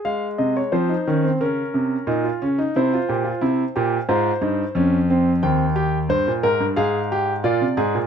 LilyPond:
<<
  \new Staff \with { instrumentName = "Grand piano" } { \time 4/4 \key f \minor \tempo 4 = 89 << { f''8 ees''16 des''16 c''4 bes'2 | c''2 c''2 | g''2 f''4 d''4 | } \\ { aes4 c'16 ees'16 des'16 c'16 des'4 ees'16 f'16 des'16 ees'16 | e'16 f'16 g'16 f'16 e'8 g'8 f'8 ees'8 des'8 c'8 | c'8 g'8 c''8 bes'8 aes'8 g'8 f'8 aes'8 | } >> }
  \new Staff \with { instrumentName = "Grand piano" } { \clef bass \time 4/4 \key f \minor r8 c8 f8 ees8 des8 c8 bes,8 des8 | c8 bes,8 c8 bes,8 aes,8 g,8 f,4 | ees,4 g,16 bes,16 aes,16 g,16 aes,4 bes,16 c16 aes,16 bes,16 | }
>>